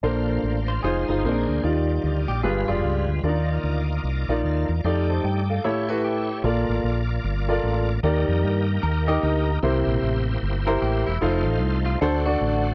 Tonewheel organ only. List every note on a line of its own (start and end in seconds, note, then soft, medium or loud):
0.04 0.82 A#3 medium
0.04 0.82 D4 medium
0.04 0.82 F4 medium
0.04 0.82 C5 medium
0.83 1.24 G#3 medium
0.83 1.24 D#4 medium
0.83 1.24 F4 medium
0.83 1.23 C5 medium
1.24 1.64 A#3 medium
1.24 1.64 D4 medium
1.24 1.64 G#4 medium
1.24 1.64 C5 medium
1.65 1.70 F3 medium
1.65 2.43 D#4 medium
1.65 2.43 F4 medium
1.65 2.43 D5 medium
1.70 2.43 G3 medium
2.44 3.23 G3 medium
2.44 3.23 G#3 medium
2.44 3.23 F4 medium
2.44 3.23 B4 medium
3.24 4.81 A#3 medium
3.24 4.81 D#4 medium
3.24 4.42 F4 medium
3.24 4.42 D5 medium
4.45 4.69 A4 soft
4.45 4.68 F5 medium
4.69 5.07 F4 medium
4.69 4.88 D5 medium
4.84 5.63 A3 medium
4.84 5.63 D#4 medium
4.84 5.62 G4 medium
4.84 4.90 C5 medium
4.89 5.65 D5 medium
5.65 6.43 A3 medium
5.65 6.43 E4 medium
5.65 6.43 G4 medium
5.65 5.71 B4 medium
5.69 6.45 C#5 medium
6.44 8.00 A#3 medium
6.44 8.00 F4 medium
6.44 8.00 D5 medium
8.03 9.59 A#3 medium
8.03 9.59 D#4 medium
8.03 9.59 G4 medium
8.03 9.59 A#4 medium
9.63 11.18 A#3 medium
9.63 11.18 E4 medium
9.63 11.18 G4 medium
9.63 11.18 C5 medium
11.21 12.00 A3 medium
11.21 11.99 D#4 medium
11.21 11.99 F4 medium
11.21 11.99 C5 medium
12.02 12.74 A3 medium
12.02 12.74 D4 medium
12.02 12.74 F#4 medium
12.02 12.74 C5 medium